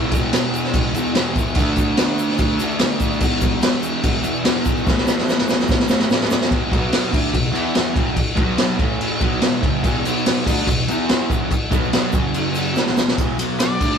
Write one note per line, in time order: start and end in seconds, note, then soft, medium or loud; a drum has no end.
0.00 0.92 E2 loud
0.00 0.94 B2 loud
0.00 0.92 E3 loud
0.12 kick loud
0.12 crash medium
0.12 shaker loud
0.33 snare loud
0.33 crash medium
0.33 shaker medium
0.54 crash medium
0.54 shaker loud
0.64 snare soft
0.73 kick loud
0.73 crash medium
0.73 shaker medium
0.94 1.15 B2 medium
0.94 1.13 E3 loud
0.94 crash medium
0.94 shaker loud
0.98 1.13 E2 medium
1.06 shaker soft
1.15 1.55 E2 medium
1.15 1.56 B2 medium
1.15 snare loud
1.15 crash medium
1.15 shaker medium
1.20 1.57 E3 medium
1.36 kick medium
1.36 crash medium
1.36 shaker loud
1.47 shaker soft
1.55 2.59 D3 loud
1.55 kick loud
1.55 crash medium
1.55 shaker medium
1.61 2.60 A3 loud
1.61 2.58 D4 loud
1.76 kick loud
1.76 crash medium
1.76 shaker loud
1.97 snare loud
1.97 crash medium
1.97 shaker medium
2.19 crash medium
2.19 shaker loud
2.29 snare soft
2.38 kick loud
2.38 crash medium
2.38 shaker medium
2.59 2.80 A3 medium
2.59 2.79 D4 medium
2.59 crash medium
2.59 shaker loud
2.64 2.78 D3 medium
2.71 shaker soft
2.79 3.19 D3 medium
2.79 3.21 A3 medium
2.79 snare loud
2.79 crash medium
2.79 shaker medium
2.84 3.22 D4 loud
3.00 kick medium
3.00 crash medium
3.00 shaker loud
3.12 shaker soft
3.20 4.22 E2 medium
3.20 4.24 B2 loud
3.20 kick loud
3.20 crash medium
3.20 shaker medium
3.25 4.22 E3 loud
3.41 kick loud
3.41 crash medium
3.41 shaker loud
3.62 snare loud
3.62 crash loud
3.62 shaker medium
3.83 crash medium
3.83 shaker loud
4.03 kick loud
4.03 crash medium
4.03 shaker medium
4.23 4.44 B2 medium
4.23 4.43 E3 loud
4.23 crash medium
4.23 shaker loud
4.27 4.43 E2 medium
4.35 shaker soft
4.45 4.85 E2 medium
4.45 4.84 B2 medium
4.45 snare loud
4.45 crash medium
4.45 shaker medium
4.50 4.85 E3 medium
4.65 kick loud
4.65 crash medium
4.65 shaker loud
4.77 shaker soft
4.85 5.87 A2 medium
4.85 5.88 E3 loud
4.85 kick loud
4.85 snare medium
4.85 shaker medium
4.89 5.86 A3 loud
4.98 snare medium
5.07 snare medium
5.07 shaker loud
5.18 snare medium
5.28 snare medium
5.28 shaker medium
5.38 snare medium
5.48 snare medium
5.48 shaker medium
5.59 snare medium
5.59 shaker soft
5.68 kick loud
5.68 snare medium
5.68 shaker medium
5.80 snare medium
5.88 6.09 E3 medium
5.88 6.08 A3 medium
5.88 snare loud
5.88 shaker loud
5.92 6.08 A2 medium
5.99 snare medium
6.10 6.50 A2 medium
6.10 6.51 E3 medium
6.10 snare loud
6.10 shaker medium
6.15 6.52 A3 loud
6.21 snare medium
6.30 snare loud
6.30 shaker loud
6.41 snare loud
6.41 shaker soft
6.51 6.71 E2 medium
6.51 6.69 B2 loud
6.51 6.73 E3 medium
6.51 kick loud
6.51 crash medium
6.71 7.12 B2 medium
6.71 7.12 F#3 medium
6.71 7.13 B3 medium
6.71 kick loud
6.71 crash medium
6.93 snare loud
6.93 crash loud
7.12 7.33 D3 medium
7.12 7.33 A3 medium
7.12 7.33 D4 loud
7.12 kick loud
7.12 crash loud
7.33 7.50 E2 medium
7.33 7.50 B2 medium
7.33 kick medium
7.33 crash medium
7.52 7.94 E3 medium
7.52 7.95 B3 loud
7.52 7.95 E4 medium
7.52 crash medium
7.75 snare loud
7.75 crash medium
7.94 8.14 E2 medium
7.94 8.16 B2 loud
7.94 8.16 E3 loud
7.94 kick loud
7.94 crash medium
8.15 muted distorted electric guitar stroke medium
8.15 kick loud
8.15 crash medium
8.36 8.77 B2 medium
8.36 8.78 F#3 medium
8.36 8.79 B3 loud
8.36 kick loud
8.36 crash medium
8.58 snare loud
8.58 crash medium
8.77 9.19 A2 loud
8.77 9.20 E3 medium
8.77 9.21 A3 loud
8.77 kick loud
8.77 crash medium
9.01 crash medium
9.20 9.40 B2 medium
9.20 9.41 F#3 loud
9.20 9.42 B3 loud
9.20 kick loud
9.20 crash medium
9.40 9.60 E2 loud
9.40 9.62 B2 loud
9.40 9.62 E3 loud
9.40 snare loud
9.40 crash medium
9.61 9.82 F#2 medium
9.61 9.83 C#3 medium
9.61 9.83 F#3 medium
9.61 kick loud
9.61 crash medium
9.83 10.03 E2 medium
9.83 10.03 B2 loud
9.83 10.04 E3 loud
9.83 kick loud
9.83 crash medium
9.83 shaker medium
10.04 10.45 B2 medium
10.04 10.46 F#3 medium
10.04 10.46 B3 medium
10.04 crash medium
10.04 shaker medium
10.18 shaker soft
10.26 snare loud
10.26 crash loud
10.26 shaker medium
10.46 10.67 D3 medium
10.46 10.67 A3 medium
10.46 10.68 D4 loud
10.46 kick loud
10.46 crash loud
10.46 shaker medium
10.59 shaker soft
10.67 10.85 E2 medium
10.67 10.85 B2 medium
10.67 kick loud
10.67 crash medium
10.67 shaker medium
10.88 11.29 E3 loud
10.88 11.30 B3 loud
10.88 11.30 E4 loud
10.88 crash medium
10.88 shaker medium
11.09 snare loud
11.09 crash medium
11.09 shaker medium
11.30 11.50 E2 medium
11.30 11.51 B2 medium
11.30 11.51 E3 loud
11.30 kick loud
11.30 crash medium
11.30 shaker medium
11.51 muted distorted electric guitar stroke medium
11.51 kick loud
11.51 crash medium
11.51 shaker medium
11.70 12.12 B2 medium
11.70 12.12 F#3 medium
11.70 12.13 B3 loud
11.70 kick loud
11.70 crash medium
11.70 shaker medium
11.84 shaker soft
11.93 snare loud
11.93 crash medium
11.93 shaker medium
12.12 12.75 F#2 medium
12.12 12.75 C#3 medium
12.12 12.76 F#3 loud
12.12 kick loud
12.12 crash medium
12.12 shaker loud
12.34 crash medium
12.34 shaker medium
12.55 crash medium
12.55 shaker loud
12.66 shaker soft
12.75 13.17 E2 medium
12.75 13.18 B2 loud
12.75 13.18 E3 loud
12.75 snare medium
12.75 shaker medium
12.86 snare medium
12.97 snare medium
12.97 shaker medium
13.08 snare loud
13.08 shaker soft
13.18 13.38 E2 loud
13.18 13.38 B2 loud
13.18 13.39 E3 loud
13.18 kick loud
13.18 ride medium
13.18 shaker medium
13.39 13.80 B2 medium
13.39 13.80 F#3 medium
13.39 13.81 B3 medium
13.39 ride medium
13.39 shaker medium
13.59 13.98 D5 loud
13.59 snare loud
13.59 ride loud
13.59 shaker loud
13.81 13.98 D3 medium
13.81 13.98 A3 medium
13.81 13.98 D4 medium
13.81 kick loud
13.81 crash loud
13.81 shaker medium